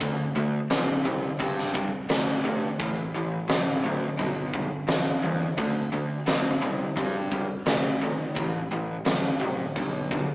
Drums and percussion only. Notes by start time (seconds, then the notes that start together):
0.01 kick, open hi-hat
0.71 snare, open hi-hat
1.40 kick, open hi-hat
1.58 snare
1.75 kick
2.10 snare, open hi-hat
2.27 snare
2.80 kick, open hi-hat
3.49 snare, open hi-hat
4.19 kick, open hi-hat
4.54 kick
4.88 snare, open hi-hat
5.58 kick, open hi-hat
6.28 snare, open hi-hat
6.97 kick, open hi-hat
7.32 kick
7.66 snare, open hi-hat
8.36 kick, open hi-hat
9.06 snare, open hi-hat
9.76 kick, open hi-hat
10.11 kick